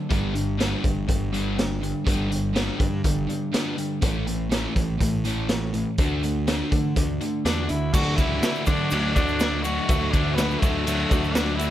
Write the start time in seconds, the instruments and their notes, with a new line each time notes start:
0.09 picked electric bass G1, distorted electric guitar G2 D3, overdriven electric guitar G3 B3 D4, kick, closed hi-hat
0.34 distorted electric guitar G2 D3, overdriven electric guitar G3 D4, closed hi-hat
0.58 distorted electric guitar G2 D3, overdriven electric guitar G3 B3 D4, snare, closed hi-hat
0.83 picked electric bass G1, distorted electric guitar G2 D3, overdriven electric guitar G3 D4, kick, closed hi-hat
1.08 picked electric bass G1, distorted electric guitar G2 D3, overdriven electric guitar G3 D4, kick, closed hi-hat
1.32 distorted electric guitar G2 D3, overdriven electric guitar G3 B3 D4, closed hi-hat
1.57 distorted electric guitar G2 D3, overdriven electric guitar G3 D4, snare, closed hi-hat
1.80 distorted electric guitar G2 D3, overdriven electric guitar G3 D4, closed hi-hat
2.04 picked electric bass G1, distorted electric guitar G2 D3, overdriven electric guitar G3 B3 D4, kick, closed hi-hat
2.30 distorted electric guitar G2 D3, overdriven electric guitar G3 D4, closed hi-hat
2.53 distorted electric guitar G2 D3, overdriven electric guitar G3 B3 D4, snare, closed hi-hat
2.79 distorted electric guitar G2 D3, picked electric bass G2, overdriven electric guitar G3 D4, kick, closed hi-hat
3.04 picked electric bass G1, distorted electric guitar G2 D3, overdriven electric guitar G3 D4, kick, closed hi-hat
3.27 distorted electric guitar G2 D3, overdriven electric guitar G3 D4, closed hi-hat
3.52 distorted electric guitar G2 D3, overdriven electric guitar G3 B3 D4, snare, closed hi-hat
3.77 distorted electric guitar G2 D3, overdriven electric guitar G3 D4, closed hi-hat
4.02 picked electric bass A1, overdriven electric guitar A2 A3 C#4, distorted electric guitar E3, kick, closed hi-hat
4.27 overdriven electric guitar A2 A3, distorted electric guitar E3, closed hi-hat
4.50 overdriven electric guitar A2 A3 C#4, distorted electric guitar E3, snare, closed hi-hat
4.74 picked electric bass A1, overdriven electric guitar A2 A3, distorted electric guitar E3, kick, closed hi-hat
4.99 picked electric bass A1, overdriven electric guitar A2 A3, distorted electric guitar E3, kick, closed hi-hat
5.24 overdriven electric guitar A2 A3 C#4, distorted electric guitar E3, closed hi-hat
5.49 overdriven electric guitar A2 A3, distorted electric guitar E3, snare, closed hi-hat
5.74 overdriven electric guitar A2 A3, distorted electric guitar E3, closed hi-hat
5.98 picked electric bass D2, overdriven electric guitar D3 D4 F#4, distorted electric guitar A3, kick, closed hi-hat
6.23 overdriven electric guitar D3 D4, distorted electric guitar A3, closed hi-hat
6.47 overdriven electric guitar D3 D4 F#4, distorted electric guitar A3, snare, closed hi-hat
6.72 picked electric bass D3, overdriven electric guitar D3 D4, distorted electric guitar A3, kick, closed hi-hat
6.96 picked electric bass D2, overdriven electric guitar D3 D4, distorted electric guitar A3, kick, closed hi-hat
7.21 overdriven electric guitar D3 D4, distorted electric guitar A3, closed hi-hat
7.45 picked electric bass E2, overdriven electric guitar D3 D4 F#4, distorted electric guitar A3, tenor saxophone D4, snare, closed hi-hat
7.69 picked electric bass D2, overdriven electric guitar D3 D4, distorted electric guitar A3, tenor saxophone E4, closed hi-hat
7.93 picked electric bass D2, overdriven electric guitar D3 F#3 A3 D4 F#4, grand piano D4 F#4 A4 D5, tenor saxophone F#4, kick, crash, shaker
8.16 picked electric bass C#2, overdriven electric guitar D3 F#3 A3, tenor saxophone E4, kick, ride, shaker
8.20 overdriven electric guitar D4 F#4
8.43 overdriven electric guitar D3 F#3 A3 D4 F#4, snare, ride, shaker
8.55 shaker
8.66 picked electric bass D3, overdriven electric guitar D3 F#3 A3 D4 F#4, tenor saxophone D4, kick, ride, shaker
8.90 picked electric bass D2, overdriven electric guitar D3 F#3 A3 D4 F#4, ride, shaker
9.15 picked electric bass D2, overdriven electric guitar D3 F#3 A3 D4 F#4, tenor saxophone D4, grand piano D4 F#4 A4 D5, kick, ride, shaker
9.28 shaker
9.40 overdriven electric guitar D3 F#3 A3 D4 F#4, snare, ride, shaker
9.63 overdriven electric guitar D3 F#3 A3 D4 F#4, tenor saxophone F#4, ride, shaker
9.88 picked electric bass D2, overdriven electric guitar D3 F#3 A3 D4 F#4, grand piano D4 F#4 A4 E5, kick, ride, shaker
10.11 picked electric bass D2, overdriven electric guitar D3 F#3 A3 D4, tenor saxophone D4, kick, ride, shaker
10.15 overdriven electric guitar F#4
10.34 overdriven electric guitar D3 F#3, tenor saxophone B3, ride
10.38 overdriven electric guitar A3 D4 F#4, snare, shaker
10.51 shaker
10.60 picked electric bass D2, overdriven electric guitar D3 F#3 A3, tenor saxophone A3, kick, ride, shaker
10.64 overdriven electric guitar D4 F#4
10.86 overdriven electric guitar D3 F#3 A3 D4 F#4, ride, shaker
11.10 picked electric bass D2, overdriven electric guitar D3 F#3 A3 D4 F#4, grand piano D4 F#4 A4 D5, kick, ride, shaker
11.24 shaker
11.32 overdriven electric guitar D3 F#3, tenor saxophone D4, snare, ride
11.36 overdriven electric guitar A3 D4 F#4, shaker
11.55 overdriven electric guitar D3, tenor saxophone E4, ride
11.59 overdriven electric guitar F#3 A3 D4 F#4, shaker